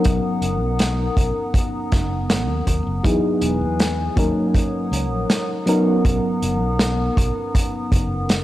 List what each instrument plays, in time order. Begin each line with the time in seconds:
Already playing: fm electric piano F#3 B3 C#4 D#4 A#4, ambient pad B3 F#5 A#5 D#6
0.04 fretless electric bass B1, kick, closed hi-hat
0.41 fretless electric bass F#1, closed hi-hat
0.61 fretless electric bass B1
0.79 snare, closed hi-hat
1.17 fretless electric bass B1, kick, closed hi-hat
1.54 kick, closed hi-hat
1.92 fretless electric bass F#1, kick, snare, closed hi-hat
2.30 snare, closed hi-hat
2.49 fretless electric bass D#2
2.67 fretless electric bass D#2, kick, closed hi-hat
2.87 fretless electric bass F#1
3.03 fretless electric bass E2, fm electric piano F#3 B3 D#4 E4 G#4, ambient pad B4 G#5, kick, closed hi-hat
3.42 fretless electric bass E1, closed hi-hat
3.61 fretless electric bass E2
3.79 snare, closed hi-hat
4.16 fretless electric bass D#2, fm electric piano F#3 A#3 C#4 D#4 A#4, ambient pad C#5 F#5 A#5 D#6, kick, closed hi-hat
4.54 kick, closed hi-hat
4.92 fretless electric bass C#2, closed hi-hat
5.11 fretless electric bass A#1
5.30 snare, closed hi-hat
5.66 fm electric piano F#3 B3 C#4 D#4 A#4, ambient pad B3 D#6, closed hi-hat
6.05 fretless electric bass B1, kick, closed hi-hat
6.42 fretless electric bass F#1, closed hi-hat
6.62 fretless electric bass B1
6.79 snare, closed hi-hat
7.17 fretless electric bass B1, kick, closed hi-hat
7.55 kick, closed hi-hat
7.92 fretless electric bass F#1, kick, closed hi-hat
8.29 snare, closed hi-hat